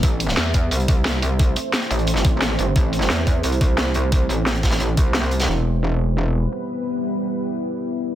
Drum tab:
HH |x-x-x-x-xxx-x-x-|x-x-xxxxx-x-x-x-|x-x-x-x-xxx-x-x-|x-x-xxxxx-x-xxxx|
SD |---oo-------o---|----o----o--o---|---oo-------o---|----o-oo----o--o|
BD |o-----o---o-----|o---------o-----|o-----o---o-----|o-----o---o-----|

HH |----------------|----------------|
SD |----------------|----------------|
BD |----------------|----------------|